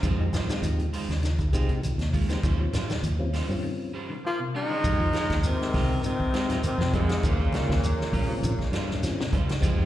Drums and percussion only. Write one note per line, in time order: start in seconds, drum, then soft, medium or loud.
0.03 kick medium
0.03 closed hi-hat medium
0.03 high conga soft
0.03 low conga medium
0.03 shekere medium
0.33 snare medium
0.33 closed hi-hat soft
0.33 high conga medium
0.33 low conga medium
0.33 shekere medium
0.49 snare medium
0.49 closed hi-hat soft
0.49 low conga medium
0.49 shekere medium
0.63 closed hi-hat medium
0.63 shekere medium
0.79 closed hi-hat soft
0.79 high conga medium
0.93 open hi-hat medium
0.93 shekere soft
1.10 snare soft
1.10 shekere soft
1.23 snare soft
1.23 closed hi-hat medium
1.23 high conga soft
1.23 shekere medium
1.39 kick medium
1.39 closed hi-hat soft
1.39 high conga medium
1.39 shekere soft
1.53 kick medium
1.53 closed hi-hat medium
1.53 shekere medium
1.69 kick medium
1.69 closed hi-hat soft
1.83 closed hi-hat medium
1.83 high conga medium
1.83 shekere medium
1.99 snare soft
1.99 closed hi-hat soft
2.13 kick medium
2.13 open hi-hat medium
2.13 high conga medium
2.13 shekere soft
2.29 snare soft
2.29 closed hi-hat soft
2.29 shekere medium
2.43 kick loud
2.43 closed hi-hat medium
2.43 high conga soft
2.43 low conga medium
2.43 shekere medium
2.73 snare medium
2.73 closed hi-hat medium
2.73 high conga medium
2.73 low conga medium
2.73 shekere medium
2.89 snare medium
2.89 closed hi-hat soft
2.89 low conga medium
2.89 shekere medium
3.03 closed hi-hat medium
3.03 shekere medium
3.20 high conga medium
3.33 snare soft
3.33 open hi-hat medium
3.33 shekere soft
3.51 shekere soft
4.84 kick loud
4.84 closed hi-hat medium
4.84 shekere medium
5.00 kick medium
5.00 high conga medium
5.13 snare medium
5.13 closed hi-hat soft
5.13 high conga loud
5.13 shekere soft
5.30 kick medium
5.30 snare medium
5.30 closed hi-hat medium
5.43 closed hi-hat medium
5.43 shekere medium
5.61 snare soft
5.74 kick medium
5.74 snare soft
5.74 open hi-hat medium
5.74 high conga medium
5.74 low conga medium
5.74 shekere soft
6.04 closed hi-hat medium
6.04 shekere medium
6.19 kick medium
6.19 high conga medium
6.34 snare medium
6.34 closed hi-hat medium
6.34 shekere soft
6.50 snare soft
6.50 closed hi-hat medium
6.50 low conga medium
6.63 closed hi-hat medium
6.63 high conga medium
6.63 shekere medium
6.81 snare medium
6.93 kick medium
6.93 closed hi-hat medium
6.93 high conga loud
6.93 low conga medium
6.93 shekere soft
7.09 snare medium
7.09 closed hi-hat medium
7.23 kick loud
7.23 closed hi-hat medium
7.23 shekere medium
7.40 kick medium
7.40 high conga medium
7.53 snare medium
7.53 closed hi-hat medium
7.53 high conga loud
7.53 shekere soft
7.69 kick medium
7.69 snare medium
7.83 closed hi-hat medium
7.83 shekere medium
7.99 snare soft
7.99 high conga medium
8.13 kick medium
8.13 open hi-hat medium
8.13 high conga medium
8.13 low conga medium
8.13 shekere soft
8.43 closed hi-hat medium
8.43 shekere medium
8.59 kick medium
8.59 snare soft
8.59 high conga medium
8.73 snare medium
8.73 closed hi-hat medium
8.73 shekere soft
8.89 snare soft
8.89 low conga medium
9.03 snare soft
9.03 closed hi-hat medium
9.03 high conga medium
9.03 shekere medium
9.20 snare medium
9.33 kick medium
9.33 closed hi-hat medium
9.33 high conga medium
9.33 low conga medium
9.33 shekere soft
9.49 snare medium
9.49 closed hi-hat medium
9.63 kick loud
9.63 closed hi-hat medium
9.63 shekere medium
9.78 kick medium